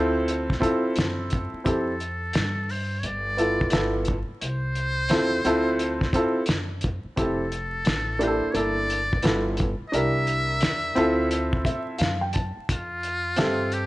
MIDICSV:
0, 0, Header, 1, 6, 480
1, 0, Start_track
1, 0, Tempo, 689655
1, 1152, Time_signature, 4, 2, 24, 8
1, 9649, End_track
2, 0, Start_track
2, 0, Title_t, "Muted trumpet"
2, 0, Program_c, 0, 59
2, 0, Note_on_c, 0, 72, 115
2, 447, Note_off_c, 0, 72, 0
2, 1160, Note_on_c, 0, 69, 84
2, 1885, Note_on_c, 0, 72, 83
2, 1896, Note_off_c, 0, 69, 0
2, 2086, Note_on_c, 0, 73, 64
2, 2096, Note_off_c, 0, 72, 0
2, 2132, Note_on_c, 0, 74, 99
2, 2142, Note_off_c, 0, 73, 0
2, 2842, Note_off_c, 0, 74, 0
2, 3074, Note_on_c, 0, 72, 118
2, 4485, Note_off_c, 0, 72, 0
2, 5023, Note_on_c, 0, 69, 85
2, 5733, Note_on_c, 0, 72, 80
2, 5743, Note_off_c, 0, 69, 0
2, 5925, Note_on_c, 0, 73, 69
2, 5935, Note_off_c, 0, 72, 0
2, 5955, Note_on_c, 0, 74, 102
2, 5965, Note_off_c, 0, 73, 0
2, 6673, Note_off_c, 0, 74, 0
2, 6879, Note_on_c, 0, 75, 80
2, 6930, Note_on_c, 0, 76, 109
2, 6940, Note_off_c, 0, 75, 0
2, 8361, Note_off_c, 0, 76, 0
2, 8851, Note_on_c, 0, 65, 102
2, 9559, Note_on_c, 0, 67, 101
2, 9569, Note_off_c, 0, 65, 0
2, 9649, Note_off_c, 0, 67, 0
2, 9649, End_track
3, 0, Start_track
3, 0, Title_t, "Upright piano"
3, 0, Program_c, 1, 0
3, 0, Note_on_c, 1, 60, 90
3, 0, Note_on_c, 1, 64, 74
3, 0, Note_on_c, 1, 65, 75
3, 0, Note_on_c, 1, 69, 98
3, 363, Note_off_c, 1, 60, 0
3, 365, Note_off_c, 1, 64, 0
3, 369, Note_off_c, 1, 65, 0
3, 371, Note_off_c, 1, 69, 0
3, 417, Note_on_c, 1, 60, 80
3, 417, Note_on_c, 1, 64, 75
3, 423, Note_on_c, 1, 65, 68
3, 427, Note_on_c, 1, 69, 90
3, 1109, Note_off_c, 1, 60, 0
3, 1109, Note_off_c, 1, 64, 0
3, 1112, Note_off_c, 1, 65, 0
3, 1114, Note_off_c, 1, 69, 0
3, 1142, Note_on_c, 1, 60, 62
3, 1144, Note_on_c, 1, 64, 53
3, 1151, Note_on_c, 1, 67, 55
3, 1158, Note_on_c, 1, 69, 63
3, 1333, Note_off_c, 1, 60, 0
3, 1334, Note_off_c, 1, 64, 0
3, 1338, Note_off_c, 1, 67, 0
3, 1341, Note_off_c, 1, 69, 0
3, 2345, Note_on_c, 1, 59, 62
3, 2352, Note_on_c, 1, 65, 55
3, 2353, Note_on_c, 1, 64, 54
3, 2359, Note_on_c, 1, 69, 65
3, 2575, Note_off_c, 1, 64, 0
3, 2576, Note_off_c, 1, 59, 0
3, 2582, Note_off_c, 1, 65, 0
3, 2585, Note_on_c, 1, 64, 55
3, 2586, Note_on_c, 1, 59, 62
3, 2587, Note_off_c, 1, 69, 0
3, 2592, Note_on_c, 1, 65, 56
3, 2597, Note_on_c, 1, 69, 72
3, 2889, Note_off_c, 1, 59, 0
3, 2889, Note_off_c, 1, 64, 0
3, 2892, Note_off_c, 1, 65, 0
3, 2895, Note_off_c, 1, 69, 0
3, 3546, Note_on_c, 1, 60, 77
3, 3551, Note_on_c, 1, 64, 67
3, 3551, Note_on_c, 1, 65, 63
3, 3555, Note_on_c, 1, 69, 85
3, 3735, Note_off_c, 1, 60, 0
3, 3737, Note_off_c, 1, 65, 0
3, 3738, Note_off_c, 1, 64, 0
3, 3740, Note_off_c, 1, 69, 0
3, 3790, Note_on_c, 1, 60, 86
3, 3796, Note_on_c, 1, 64, 81
3, 3797, Note_on_c, 1, 65, 81
3, 3801, Note_on_c, 1, 69, 93
3, 4209, Note_off_c, 1, 60, 0
3, 4212, Note_off_c, 1, 64, 0
3, 4212, Note_off_c, 1, 65, 0
3, 4214, Note_off_c, 1, 69, 0
3, 4270, Note_on_c, 1, 60, 78
3, 4276, Note_on_c, 1, 64, 68
3, 4277, Note_on_c, 1, 65, 64
3, 4282, Note_on_c, 1, 69, 87
3, 4457, Note_off_c, 1, 60, 0
3, 4460, Note_off_c, 1, 64, 0
3, 4461, Note_off_c, 1, 65, 0
3, 4463, Note_off_c, 1, 69, 0
3, 4984, Note_on_c, 1, 60, 56
3, 4990, Note_on_c, 1, 64, 57
3, 4994, Note_on_c, 1, 67, 53
3, 4996, Note_on_c, 1, 69, 68
3, 5174, Note_off_c, 1, 60, 0
3, 5177, Note_off_c, 1, 64, 0
3, 5179, Note_off_c, 1, 67, 0
3, 5180, Note_off_c, 1, 69, 0
3, 5701, Note_on_c, 1, 58, 61
3, 5701, Note_on_c, 1, 62, 63
3, 5706, Note_on_c, 1, 64, 57
3, 5714, Note_on_c, 1, 67, 57
3, 5759, Note_on_c, 1, 69, 74
3, 5770, Note_off_c, 1, 67, 0
3, 5932, Note_off_c, 1, 58, 0
3, 5936, Note_off_c, 1, 62, 0
3, 5942, Note_on_c, 1, 58, 65
3, 5944, Note_off_c, 1, 64, 0
3, 5946, Note_on_c, 1, 62, 51
3, 5951, Note_off_c, 1, 69, 0
3, 5954, Note_on_c, 1, 64, 57
3, 5961, Note_on_c, 1, 69, 65
3, 6247, Note_off_c, 1, 58, 0
3, 6249, Note_off_c, 1, 62, 0
3, 6253, Note_off_c, 1, 64, 0
3, 6257, Note_off_c, 1, 69, 0
3, 6421, Note_on_c, 1, 59, 62
3, 6422, Note_on_c, 1, 64, 61
3, 6428, Note_on_c, 1, 65, 55
3, 6429, Note_on_c, 1, 69, 70
3, 6727, Note_off_c, 1, 59, 0
3, 6727, Note_off_c, 1, 64, 0
3, 6730, Note_off_c, 1, 65, 0
3, 6731, Note_off_c, 1, 69, 0
3, 6905, Note_on_c, 1, 62, 60
3, 6911, Note_on_c, 1, 64, 49
3, 6918, Note_on_c, 1, 67, 53
3, 6921, Note_on_c, 1, 70, 67
3, 7592, Note_off_c, 1, 62, 0
3, 7596, Note_off_c, 1, 64, 0
3, 7599, Note_off_c, 1, 67, 0
3, 7601, Note_off_c, 1, 70, 0
3, 7622, Note_on_c, 1, 60, 86
3, 7625, Note_on_c, 1, 64, 81
3, 7635, Note_on_c, 1, 65, 81
3, 7637, Note_on_c, 1, 69, 85
3, 8110, Note_on_c, 1, 76, 67
3, 8334, Note_off_c, 1, 76, 0
3, 8343, Note_on_c, 1, 77, 65
3, 8439, Note_off_c, 1, 60, 0
3, 8440, Note_off_c, 1, 64, 0
3, 8446, Note_off_c, 1, 65, 0
3, 8447, Note_off_c, 1, 69, 0
3, 8487, Note_off_c, 1, 77, 0
3, 8501, Note_on_c, 1, 79, 57
3, 8585, Note_off_c, 1, 79, 0
3, 8588, Note_on_c, 1, 81, 67
3, 8813, Note_off_c, 1, 81, 0
3, 9301, Note_on_c, 1, 60, 63
3, 9308, Note_on_c, 1, 76, 61
3, 9310, Note_on_c, 1, 67, 59
3, 9316, Note_on_c, 1, 69, 73
3, 9649, Note_off_c, 1, 60, 0
3, 9649, Note_off_c, 1, 67, 0
3, 9649, Note_off_c, 1, 69, 0
3, 9649, Note_off_c, 1, 76, 0
3, 9649, End_track
4, 0, Start_track
4, 0, Title_t, "Upright bass"
4, 0, Program_c, 2, 32
4, 0, Note_on_c, 2, 38, 82
4, 408, Note_off_c, 2, 38, 0
4, 678, Note_on_c, 2, 42, 85
4, 1046, Note_off_c, 2, 42, 0
4, 1156, Note_on_c, 2, 41, 88
4, 1610, Note_off_c, 2, 41, 0
4, 1637, Note_on_c, 2, 43, 96
4, 2091, Note_off_c, 2, 43, 0
4, 2112, Note_on_c, 2, 31, 84
4, 2568, Note_off_c, 2, 31, 0
4, 2597, Note_on_c, 2, 31, 98
4, 2965, Note_off_c, 2, 31, 0
4, 3076, Note_on_c, 2, 36, 82
4, 3530, Note_off_c, 2, 36, 0
4, 3554, Note_on_c, 2, 40, 88
4, 3781, Note_off_c, 2, 40, 0
4, 3792, Note_on_c, 2, 38, 79
4, 4248, Note_off_c, 2, 38, 0
4, 4513, Note_on_c, 2, 42, 85
4, 4884, Note_off_c, 2, 42, 0
4, 4996, Note_on_c, 2, 29, 84
4, 5450, Note_off_c, 2, 29, 0
4, 5473, Note_on_c, 2, 33, 96
4, 5843, Note_off_c, 2, 33, 0
4, 5948, Note_on_c, 2, 31, 93
4, 6406, Note_off_c, 2, 31, 0
4, 6431, Note_on_c, 2, 31, 97
4, 6803, Note_off_c, 2, 31, 0
4, 6913, Note_on_c, 2, 36, 89
4, 7368, Note_off_c, 2, 36, 0
4, 7393, Note_on_c, 2, 40, 87
4, 7620, Note_off_c, 2, 40, 0
4, 7633, Note_on_c, 2, 38, 81
4, 8088, Note_off_c, 2, 38, 0
4, 8356, Note_on_c, 2, 42, 90
4, 8725, Note_off_c, 2, 42, 0
4, 8834, Note_on_c, 2, 41, 87
4, 9289, Note_off_c, 2, 41, 0
4, 9316, Note_on_c, 2, 43, 95
4, 9649, Note_off_c, 2, 43, 0
4, 9649, End_track
5, 0, Start_track
5, 0, Title_t, "Muted upright bass strokes"
5, 1068, Note_on_c, 9, 29, 44
5, 1137, Note_off_c, 9, 29, 0
5, 2986, Note_on_c, 9, 29, 45
5, 3056, Note_off_c, 9, 29, 0
5, 4903, Note_on_c, 9, 29, 46
5, 4972, Note_off_c, 9, 29, 0
5, 5865, Note_on_c, 9, 29, 44
5, 5935, Note_off_c, 9, 29, 0
5, 6824, Note_on_c, 9, 29, 44
5, 6893, Note_off_c, 9, 29, 0
5, 8750, Note_on_c, 9, 29, 48
5, 8820, Note_off_c, 9, 29, 0
5, 9649, End_track
6, 0, Start_track
6, 0, Title_t, "Drums"
6, 195, Note_on_c, 9, 42, 79
6, 265, Note_off_c, 9, 42, 0
6, 347, Note_on_c, 9, 36, 88
6, 361, Note_on_c, 9, 38, 35
6, 416, Note_off_c, 9, 36, 0
6, 430, Note_on_c, 9, 36, 91
6, 431, Note_off_c, 9, 38, 0
6, 439, Note_on_c, 9, 42, 67
6, 499, Note_off_c, 9, 36, 0
6, 509, Note_off_c, 9, 42, 0
6, 666, Note_on_c, 9, 42, 80
6, 686, Note_on_c, 9, 38, 109
6, 735, Note_off_c, 9, 42, 0
6, 756, Note_off_c, 9, 38, 0
6, 906, Note_on_c, 9, 42, 68
6, 924, Note_on_c, 9, 36, 89
6, 976, Note_off_c, 9, 42, 0
6, 994, Note_off_c, 9, 36, 0
6, 1154, Note_on_c, 9, 36, 99
6, 1154, Note_on_c, 9, 42, 86
6, 1224, Note_off_c, 9, 36, 0
6, 1224, Note_off_c, 9, 42, 0
6, 1393, Note_on_c, 9, 42, 55
6, 1463, Note_off_c, 9, 42, 0
6, 1624, Note_on_c, 9, 42, 86
6, 1639, Note_on_c, 9, 38, 104
6, 1693, Note_off_c, 9, 42, 0
6, 1708, Note_off_c, 9, 38, 0
6, 1875, Note_on_c, 9, 46, 45
6, 1945, Note_off_c, 9, 46, 0
6, 2111, Note_on_c, 9, 42, 80
6, 2180, Note_off_c, 9, 42, 0
6, 2355, Note_on_c, 9, 42, 63
6, 2425, Note_off_c, 9, 42, 0
6, 2513, Note_on_c, 9, 36, 85
6, 2577, Note_on_c, 9, 42, 91
6, 2583, Note_off_c, 9, 36, 0
6, 2597, Note_on_c, 9, 38, 114
6, 2646, Note_off_c, 9, 42, 0
6, 2667, Note_off_c, 9, 38, 0
6, 2818, Note_on_c, 9, 42, 69
6, 2841, Note_on_c, 9, 36, 84
6, 2887, Note_off_c, 9, 42, 0
6, 2911, Note_off_c, 9, 36, 0
6, 3073, Note_on_c, 9, 42, 85
6, 3142, Note_off_c, 9, 42, 0
6, 3309, Note_on_c, 9, 42, 55
6, 3378, Note_off_c, 9, 42, 0
6, 3541, Note_on_c, 9, 42, 81
6, 3556, Note_on_c, 9, 38, 90
6, 3611, Note_off_c, 9, 42, 0
6, 3626, Note_off_c, 9, 38, 0
6, 3792, Note_on_c, 9, 42, 66
6, 3861, Note_off_c, 9, 42, 0
6, 4032, Note_on_c, 9, 42, 79
6, 4101, Note_off_c, 9, 42, 0
6, 4185, Note_on_c, 9, 36, 83
6, 4194, Note_on_c, 9, 38, 35
6, 4254, Note_off_c, 9, 36, 0
6, 4263, Note_off_c, 9, 38, 0
6, 4267, Note_on_c, 9, 36, 100
6, 4274, Note_on_c, 9, 42, 68
6, 4336, Note_off_c, 9, 36, 0
6, 4344, Note_off_c, 9, 42, 0
6, 4496, Note_on_c, 9, 42, 88
6, 4516, Note_on_c, 9, 38, 104
6, 4565, Note_off_c, 9, 42, 0
6, 4586, Note_off_c, 9, 38, 0
6, 4740, Note_on_c, 9, 42, 65
6, 4762, Note_on_c, 9, 36, 97
6, 4810, Note_off_c, 9, 42, 0
6, 4831, Note_off_c, 9, 36, 0
6, 4992, Note_on_c, 9, 42, 92
6, 4993, Note_on_c, 9, 36, 102
6, 5062, Note_off_c, 9, 42, 0
6, 5063, Note_off_c, 9, 36, 0
6, 5232, Note_on_c, 9, 42, 62
6, 5302, Note_off_c, 9, 42, 0
6, 5463, Note_on_c, 9, 42, 82
6, 5478, Note_on_c, 9, 38, 102
6, 5533, Note_off_c, 9, 42, 0
6, 5548, Note_off_c, 9, 38, 0
6, 5712, Note_on_c, 9, 42, 66
6, 5782, Note_off_c, 9, 42, 0
6, 5948, Note_on_c, 9, 42, 79
6, 6018, Note_off_c, 9, 42, 0
6, 6193, Note_on_c, 9, 42, 64
6, 6263, Note_off_c, 9, 42, 0
6, 6353, Note_on_c, 9, 36, 78
6, 6420, Note_on_c, 9, 42, 81
6, 6423, Note_off_c, 9, 36, 0
6, 6441, Note_on_c, 9, 38, 112
6, 6490, Note_off_c, 9, 42, 0
6, 6510, Note_off_c, 9, 38, 0
6, 6661, Note_on_c, 9, 42, 72
6, 6682, Note_on_c, 9, 36, 96
6, 6730, Note_off_c, 9, 42, 0
6, 6752, Note_off_c, 9, 36, 0
6, 6915, Note_on_c, 9, 42, 94
6, 6985, Note_off_c, 9, 42, 0
6, 7148, Note_on_c, 9, 42, 60
6, 7218, Note_off_c, 9, 42, 0
6, 7382, Note_on_c, 9, 42, 81
6, 7397, Note_on_c, 9, 38, 95
6, 7452, Note_off_c, 9, 42, 0
6, 7467, Note_off_c, 9, 38, 0
6, 7629, Note_on_c, 9, 42, 60
6, 7698, Note_off_c, 9, 42, 0
6, 7870, Note_on_c, 9, 42, 81
6, 7940, Note_off_c, 9, 42, 0
6, 8024, Note_on_c, 9, 36, 85
6, 8094, Note_off_c, 9, 36, 0
6, 8108, Note_on_c, 9, 36, 89
6, 8117, Note_on_c, 9, 42, 68
6, 8177, Note_off_c, 9, 36, 0
6, 8187, Note_off_c, 9, 42, 0
6, 8342, Note_on_c, 9, 42, 80
6, 8362, Note_on_c, 9, 38, 105
6, 8411, Note_off_c, 9, 42, 0
6, 8432, Note_off_c, 9, 38, 0
6, 8581, Note_on_c, 9, 42, 71
6, 8601, Note_on_c, 9, 36, 85
6, 8651, Note_off_c, 9, 42, 0
6, 8671, Note_off_c, 9, 36, 0
6, 8832, Note_on_c, 9, 36, 92
6, 8832, Note_on_c, 9, 42, 91
6, 8901, Note_off_c, 9, 36, 0
6, 8902, Note_off_c, 9, 42, 0
6, 9070, Note_on_c, 9, 42, 54
6, 9140, Note_off_c, 9, 42, 0
6, 9302, Note_on_c, 9, 42, 80
6, 9317, Note_on_c, 9, 38, 97
6, 9371, Note_off_c, 9, 42, 0
6, 9386, Note_off_c, 9, 38, 0
6, 9548, Note_on_c, 9, 42, 64
6, 9617, Note_off_c, 9, 42, 0
6, 9649, End_track
0, 0, End_of_file